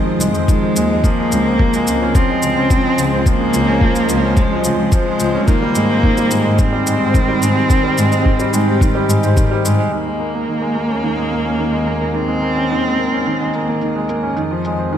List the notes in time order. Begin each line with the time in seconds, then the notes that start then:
Already playing: D#3 F3 G#3 C4 G#4 D#5
0.06 F3
0.20 C2 G#3, shaker
0.34 F2 C4, shaker
0.48 D#3 G#3, kick, shaker
0.62 F3
0.76 D#2 G#3, shaker
0.90 G#3
1.03 C#3 F3 A#3, kick, shaker
1.18 G#3
1.24 F4
1.32 C#2 C4, shaker
1.46 C4
1.59 F3, kick
1.74 G#3, shaker
1.87 C#2 C4, shaker
2.01 C#4 C5
2.15 F3 C4, kick, shaker
2.30 G#3
2.42 C#2 C4, shaker
2.56 C#2 C#4
2.70 F3, kick, shaker
2.85 G#3
2.98 C#2 C4, shaker
3.14 C4
3.19 C4
3.26 F3 A#3, kick, shaker
3.41 G#3
3.54 C#2 C4, shaker
3.69 C#4
3.81 F3, kick
3.95 G#3, shaker
4.09 C#2 C4, shaker
4.24 C#4
4.37 F3 G#3, kick, shaker
4.52 G#3
4.64 C#2 F3 C4, shaker
4.79 C#2 C4
4.92 F3 G#3, kick, shaker
5.07 G#3
5.20 C#2 C4, shaker
5.35 C#4
5.48 D#3 A#3, kick, shaker
5.62 G3 D#4
5.75 G#2 G#3, shaker
5.90 C4
6.00 D#3 G4, kick
6.17 G3, shaker
6.31 G#2 G#3, shaker
6.45 G#3
6.59 D#3 C4, kick, shaker
6.72 G3
6.87 G#2 G#3, shaker
7.00 G#2 C4
7.14 D#3, kick, shaker
7.28 G3
7.42 G#2 G#3, shaker
7.56 C4
7.69 D#3, kick, shaker
7.84 G3
7.97 G#2 G#3, shaker
8.11 G#3, shaker
8.25 D#3, kick
8.39 G3, shaker
8.54 G#2 G#3, shaker
8.68 C4
8.81 D#3, kick, shaker
8.95 G3
9.09 G#2 G#3, shaker
9.23 G#2 C4, shaker
9.37 D#3, kick, shaker
9.51 G3
9.65 G#2 G#3, shaker
9.79 G#3
9.92 D#2 D#3 A#3, shaker
10.03 G#3 G#4
10.20 C#3 A#3, shaker
10.34 A#3
10.47 D#3 D#5
10.62 G#3, shaker
10.75 A#3, shaker
10.90 C#4
11.03 D#3, shaker
11.17 G#3
11.31 A#3, shaker
11.45 C#4
11.59 D#3, shaker
11.72 G#3
11.86 A#3, shaker
12.01 A#3
12.14 D#3 C4, shaker
12.28 G#3
12.42 A#3, shaker
12.56 C#4
12.71 D#3
12.84 G#3, shaker
12.97 A#3, shaker
13.13 C#4
13.25 D#3, shaker
13.41 G#3
13.54 A#3, shaker
13.68 A#3
13.81 D#3, shaker
13.96 G#3
14.09 A#3, shaker
14.23 C#4
14.37 F2 D#3 F3, shaker
14.45 C4
14.51 F3
14.65 G#3, shaker
14.79 C4
14.93 D#3